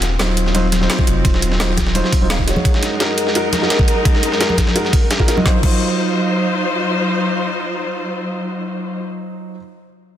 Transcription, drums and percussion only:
0.02 snare, closed hi-hat, ride
0.19 snare, closed hi-hat, ride
0.37 closed hi-hat, ride
0.46 snare
0.55 closed hi-hat, ride
0.72 snare, closed hi-hat, ride, high conga
0.81 snare
0.90 snare, closed hi-hat, ride
0.99 kick
1.07 closed hi-hat, ride
1.25 kick, closed hi-hat, ride
1.34 snare
1.42 closed hi-hat, ride
1.52 snare
1.60 snare, closed hi-hat, ride
1.77 kick, snare, closed hi-hat, ride, high conga
1.87 snare
1.95 closed hi-hat, ride
2.04 snare
2.12 kick, closed hi-hat, open hi-hat
2.30 snare, closed hi-hat, ride
2.39 kick
2.48 snare, closed hi-hat, ride
2.56 high conga
2.65 kick, closed hi-hat, ride
2.74 snare
2.83 snare, closed hi-hat, ride
3.00 snare, closed hi-hat, ride
3.18 closed hi-hat, ride
3.27 snare
3.35 closed hi-hat, ride
3.53 snare, closed hi-hat, ride, high conga
3.62 snare
3.70 snare, closed hi-hat, ride
3.79 kick
3.88 closed hi-hat, ride
4.05 kick, closed hi-hat, ride
4.15 snare
4.23 closed hi-hat, ride
4.32 snare
4.41 snare, closed hi-hat, ride
4.50 high conga
4.58 kick, snare, closed hi-hat, ride, high conga
4.67 snare
4.76 closed hi-hat, ride
4.85 snare
4.93 kick, closed hi-hat, open hi-hat
5.11 snare, closed hi-hat, ride
5.20 kick
5.28 snare, closed hi-hat, ride
5.37 high conga
5.46 kick, snare
5.63 kick, crash

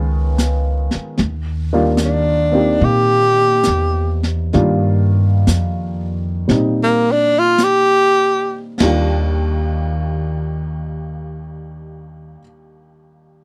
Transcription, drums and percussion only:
0.38 snare, hi-hat pedal
0.91 snare
1.18 brush sweep, snare
1.97 snare, hi-hat pedal
2.79 brush sweep
3.63 snare, hi-hat pedal
4.23 snare
4.53 brush sweep, snare
5.47 snare, hi-hat pedal
6.49 brush sweep, snare
7.58 snare, hi-hat pedal
8.80 snare, ride bell

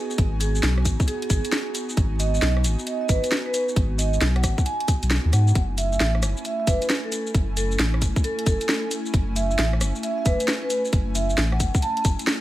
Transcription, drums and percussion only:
0.10 shaker
0.18 kick, closed hi-hat, shaker
0.41 open hi-hat, shaker
0.55 shaker
0.63 snare, closed hi-hat, shaker
0.78 cross-stick
0.85 kick, open hi-hat, shaker
1.00 kick, shaker
1.08 closed hi-hat, shaker
1.22 open hi-hat
1.30 kick, open hi-hat, shaker
1.45 closed hi-hat, shaker
1.52 snare, closed hi-hat, shaker
1.75 open hi-hat, shaker
1.89 shaker
1.97 kick, closed hi-hat, shaker
2.20 open hi-hat, shaker
2.34 shaker
2.42 snare, closed hi-hat, shaker
2.57 cross-stick
2.64 open hi-hat, shaker
2.79 shaker
2.87 closed hi-hat, shaker
3.09 kick, open hi-hat, shaker
3.24 closed hi-hat, shaker
3.32 snare, closed hi-hat, shaker
3.54 open hi-hat, shaker
3.69 shaker
3.76 kick, closed hi-hat, shaker
3.99 open hi-hat, shaker
4.13 shaker
4.21 snare, closed hi-hat, shaker
4.36 cross-stick, closed hi-hat
4.43 kick, cross-stick, open hi-hat, shaker
4.58 kick, shaker
4.66 closed hi-hat, shaker
4.80 open hi-hat
4.88 kick, open hi-hat, shaker
5.03 closed hi-hat, shaker
5.11 snare, closed hi-hat, shaker
5.33 cross-stick, open hi-hat, shaker
5.48 shaker
5.55 kick, closed hi-hat, shaker
5.78 open hi-hat, shaker
5.92 shaker
6.00 snare, closed hi-hat, shaker
6.15 cross-stick
6.23 cross-stick, open hi-hat, shaker
6.37 shaker
6.45 closed hi-hat, shaker
6.67 kick, open hi-hat, shaker
6.82 closed hi-hat, shaker
6.90 snare, closed hi-hat, shaker
7.12 open hi-hat, shaker
7.27 shaker
7.34 kick, closed hi-hat, shaker
7.57 open hi-hat, shaker
7.72 shaker
7.79 snare, closed hi-hat, shaker
7.94 cross-stick
8.02 kick, open hi-hat, shaker
8.16 kick, shaker
8.24 closed hi-hat, shaker
8.39 open hi-hat
8.46 kick, open hi-hat, shaker
8.61 closed hi-hat, shaker
8.69 snare, closed hi-hat, shaker
8.91 open hi-hat, shaker
9.06 shaker
9.14 kick, closed hi-hat, shaker
9.36 open hi-hat, shaker
9.51 shaker
9.59 snare, closed hi-hat, shaker
9.73 cross-stick
9.81 cross-stick, open hi-hat, shaker
9.96 shaker
10.03 closed hi-hat, shaker
10.26 kick, open hi-hat, shaker
10.40 closed hi-hat, shaker
10.48 snare, closed hi-hat, shaker
10.70 open hi-hat, shaker
10.85 shaker
10.93 kick, closed hi-hat, shaker
11.15 open hi-hat, shaker
11.30 shaker
11.38 snare, closed hi-hat, shaker
11.52 cross-stick
11.60 kick, open hi-hat, shaker
11.75 kick, shaker
11.82 closed hi-hat, shaker
11.97 open hi-hat
12.05 kick, open hi-hat, shaker
12.19 closed hi-hat, shaker
12.27 snare, closed hi-hat, shaker

